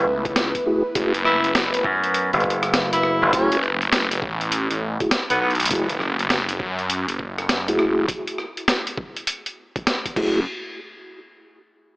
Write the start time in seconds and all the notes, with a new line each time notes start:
Already playing: A3 E4 B4
0.07 C#2
0.25 kick, closed hi-hat
0.36 snare, closed hi-hat
0.55 kick, closed hi-hat
0.66 A3 E4 F#4 G#4
0.95 F#1 A3 E4 F#4 G#4, kick, closed hi-hat
1.14 closed hi-hat
1.25 E4, cross-stick
1.44 F#1, closed hi-hat
1.55 snare, closed hi-hat
1.74 closed hi-hat
1.84 F#2, kick
2.04 closed hi-hat
2.14 closed hi-hat
2.33 F#1, closed hi-hat
2.40 kick, closed hi-hat
2.50 closed hi-hat
2.63 cross-stick, closed hi-hat
2.74 snare, closed hi-hat
2.93 E4, closed hi-hat
3.03 cross-stick
3.22 F#1
3.33 A3 C#4 E4 F#4 G#4, kick, closed hi-hat
3.52 F#1, closed hi-hat
3.63 cross-stick
3.82 closed hi-hat
3.92 snare, closed hi-hat
4.11 F#1, closed hi-hat
4.22 A1, kick
4.41 closed hi-hat
4.52 closed hi-hat
4.71 A1, closed hi-hat
5.00 A3 E4 F#4 G#4, kick, closed hi-hat
5.11 snare, closed hi-hat
5.30 B1 B3, closed hi-hat
5.41 B3
5.51 closed hi-hat
5.55 closed hi-hat
5.60 closed hi-hat
5.63 closed hi-hat
5.65 closed hi-hat
5.68 closed hi-hat
5.71 F#1 A3 E4 F#4 G#4, kick, closed hi-hat, impact
5.89 closed hi-hat
6.00 cross-stick
6.19 F#1, closed hi-hat
6.30 snare, closed hi-hat
6.49 closed hi-hat
6.60 F#2, kick
6.79 closed hi-hat
6.90 closed hi-hat
7.08 F#1, closed hi-hat
7.19 kick
7.38 cross-stick, closed hi-hat
7.49 snare, closed hi-hat
7.68 A3 E4 F#4 G#4, closed hi-hat
7.79 cross-stick
7.97 F#1
8.08 kick, closed hi-hat
8.27 closed hi-hat
8.38 cross-stick
8.57 closed hi-hat
8.68 snare, closed hi-hat
8.87 closed hi-hat
8.98 kick
9.17 closed hi-hat
9.27 closed hi-hat
9.46 closed hi-hat
9.76 kick, closed hi-hat
9.87 snare, closed hi-hat
10.06 kick, closed hi-hat
10.16 F#1 A3 E4 F#4 G#4, kick, crash